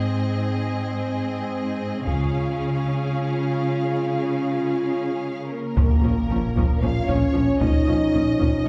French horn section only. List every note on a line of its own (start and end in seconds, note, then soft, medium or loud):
0.00 2.03 G#3 medium
0.00 2.03 C4 medium
2.08 5.35 G#3 soft
2.08 5.35 F4 medium
5.52 6.79 A#3 medium
6.82 7.09 F4 medium
7.09 7.61 C#4 medium
7.61 8.65 D#4 medium